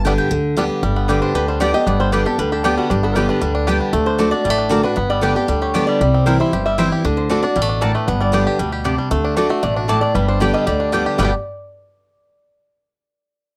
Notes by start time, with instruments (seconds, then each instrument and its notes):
Already playing: upright bass G1, steel-string acoustic guitar G2
0.05 steel-string acoustic guitar D3 G3 B3 G4, five-string banjo G3 B3 D4, mandolin G5
0.18 mandolin G5
0.31 upright bass D2, steel-string acoustic guitar D3
0.57 steel-string acoustic guitar D3 G3 B3 G4, five-string banjo G3 B3 D4
0.83 upright bass G1, steel-string acoustic guitar G2, five-string banjo G3
0.96 five-string banjo B3
1.08 steel-string acoustic guitar D3 G3 B3 G4, five-string banjo G3, mandolin B3 G4 D5 G5
1.22 five-string banjo D4, resonator guitar played with a steel bar C5
1.34 upright bass D2, steel-string acoustic guitar D3, five-string banjo G4, resonator guitar played with a steel bar B4
1.48 five-string banjo G3, resonator guitar played with a steel bar C5
1.60 steel-string acoustic guitar D3 G3 B3 G4, mandolin B3 G4 D5 G5, five-string banjo D4, resonator guitar played with a steel bar D5
1.74 steel-string acoustic guitar B3 G4, five-string banjo G4, resonator guitar played with a steel bar D#5
1.87 upright bass G1, steel-string acoustic guitar G2, five-string banjo B3, resonator guitar played with a steel bar D5
2.00 five-string banjo G3, resonator guitar played with a steel bar C5
2.12 steel-string acoustic guitar D3 G3 B3 G4, mandolin B3 G4 D5 G5, five-string banjo D4, resonator guitar played with a steel bar B4
2.25 steel-string acoustic guitar B3 G4, five-string banjo G4, resonator guitar played with a steel bar A4
2.38 upright bass D2, steel-string acoustic guitar D3, five-string banjo G3, resonator guitar played with a steel bar B4
2.52 five-string banjo G4, resonator guitar played with a steel bar A4
2.64 steel-string acoustic guitar D3 G3 B3 G4, mandolin B3 G4 D5 G5, five-string banjo D4, resonator guitar played with a steel bar G4
2.78 five-string banjo G3, resonator guitar played with a steel bar F#4
2.90 upright bass G1, steel-string acoustic guitar G2, five-string banjo D4, resonator guitar played with a steel bar G4
3.03 five-string banjo B3, resonator guitar played with a steel bar A4
3.15 steel-string acoustic guitar D3 G3 B3 G4, five-string banjo G3, mandolin B3 G4 D5 G5, resonator guitar played with a steel bar B4
3.29 five-string banjo D4, resonator guitar played with a steel bar B4
3.41 upright bass D2, steel-string acoustic guitar D3, five-string banjo G3
3.55 five-string banjo D4
3.67 steel-string acoustic guitar D3 G3 B3 G4, mandolin B3 G4 D5 G5, five-string banjo G4
3.81 five-string banjo D4
3.93 upright bass D2, steel-string acoustic guitar D3, five-string banjo A3
4.06 five-string banjo D4, resonator guitar played with a steel bar C5
4.18 steel-string acoustic guitar D3 A3 D4 F#4, mandolin A3 F#4 D5 A5, five-string banjo A3
4.31 five-string banjo D4, steel-string acoustic guitar D4 F#4, resonator guitar played with a steel bar D5
4.45 upright bass A1, steel-string acoustic guitar A2, five-string banjo G3
4.50 five-string banjo A3
4.58 five-string banjo D4
4.69 steel-string acoustic guitar D3 A3 D4 F#4, mandolin A3 F#4 D5 A5, five-string banjo D4, resonator guitar played with a steel bar A#4
4.83 five-string banjo D4, steel-string acoustic guitar D4 F#4, resonator guitar played with a steel bar B4
4.96 upright bass G1, steel-string acoustic guitar G2, five-string banjo B3
5.10 five-string banjo G3, resonator guitar played with a steel bar D5
5.21 steel-string acoustic guitar D3 G3 B3 G4, mandolin B3 G4 D5 G5, five-string banjo D4
5.36 steel-string acoustic guitar B3 G4, five-string banjo G4
5.48 upright bass D2, steel-string acoustic guitar D3, five-string banjo G3
5.62 five-string banjo G4, resonator guitar played with a steel bar C#5
5.74 steel-string acoustic guitar D3 G3 B3 G4, mandolin B3 G4 D5 G5, five-string banjo D4
5.87 five-string banjo G3, resonator guitar played with a steel bar D5
6.01 upright bass C2, steel-string acoustic guitar C3, five-string banjo G3
6.14 five-string banjo C4
6.26 steel-string acoustic guitar E3 G3 C4 E4, five-string banjo G3, mandolin C4 E4 C5 G5, resonator guitar played with a steel bar A#4
6.40 five-string banjo E4, resonator guitar played with a steel bar C5
6.53 upright bass G1, steel-string acoustic guitar G2, five-string banjo G4
6.66 five-string banjo G3, resonator guitar played with a steel bar E5
6.78 steel-string acoustic guitar E3 G3 C4 E4, mandolin C4 E4 C5 G5, five-string banjo E4
6.92 five-string banjo G4
7.04 upright bass D2, steel-string acoustic guitar D3, five-string banjo D4
7.17 resonator guitar played with a steel bar C5
7.30 steel-string acoustic guitar D3 A3 D4 F#4, mandolin A3 F#4 D5 A5, five-string banjo D4
7.43 five-string banjo D4, steel-string acoustic guitar D4 F#4, resonator guitar played with a steel bar D5
7.56 upright bass A1, steel-string acoustic guitar B2, five-string banjo G3
7.62 five-string banjo A3
7.69 five-string banjo D4
7.81 steel-string acoustic guitar A2, mandolin A3 F#4 D5 A5, five-string banjo D4, resonator guitar played with a steel bar A#4
7.95 five-string banjo A3, resonator guitar played with a steel bar B4
8.08 upright bass G1, steel-string acoustic guitar G2, five-string banjo B3
8.21 five-string banjo G3, resonator guitar played with a steel bar D5
8.32 steel-string acoustic guitar D3 G3 B3 G4, mandolin B3 G4 D5 G5, five-string banjo D4
8.47 five-string banjo G4
8.59 upright bass D2, steel-string acoustic guitar B2, five-string banjo G3
8.72 five-string banjo G4
8.84 steel-string acoustic guitar C3, mandolin B3 G4 D5 G5, five-string banjo D4
8.98 five-string banjo G3
9.11 upright bass D2, steel-string acoustic guitar D3, five-string banjo A3
9.25 five-string banjo D4
9.36 steel-string acoustic guitar D3 A3 D4 F#4, mandolin A3 F#4 D5 A5, five-string banjo D4
9.50 five-string banjo A3, steel-string acoustic guitar D4 F#4
9.63 upright bass A1, steel-string acoustic guitar B2, five-string banjo D4, resonator guitar played with a steel bar D5
9.76 five-string banjo D4, resonator guitar played with a steel bar F#4
9.88 steel-string acoustic guitar A2, mandolin A3 F#4 D5 A5, five-string banjo A3, resonator guitar played with a steel bar A4
10.01 five-string banjo D4, resonator guitar played with a steel bar D5
10.15 upright bass G1, steel-string acoustic guitar G2, five-string banjo G3, resonator guitar played with a steel bar B4
10.28 five-string banjo D4, resonator guitar played with a steel bar C5
10.40 steel-string acoustic guitar D3 G3 B3 G4, mandolin B3 G4 D5 G5, five-string banjo G4, resonator guitar played with a steel bar D5
10.54 five-string banjo G3, resonator guitar played with a steel bar D#5
10.67 upright bass D2, steel-string acoustic guitar D3, five-string banjo G4, resonator guitar played with a steel bar D5
10.80 five-string banjo D4
10.92 steel-string acoustic guitar D3 G3 B3 G4, five-string banjo G3, mandolin B3 G4 D5 G5
11.06 five-string banjo G4
11.18 upright bass G1, steel-string acoustic guitar G2 B2 D3 G3 B3 G4, five-string banjo G3 B3, mandolin B3 G4 D5 G5, resonator guitar played with a steel bar D5
11.23 five-string banjo D4 G4